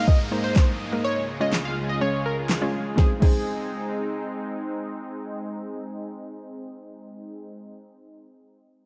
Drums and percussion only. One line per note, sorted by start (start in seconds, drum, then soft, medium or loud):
0.08 kick medium
0.56 kick loud
0.56 snare medium
0.56 clap loud
1.53 snare medium
1.53 clap loud
2.49 snare medium
2.49 clap medium
2.98 kick loud
2.98 snare medium
3.22 kick medium
3.22 crash medium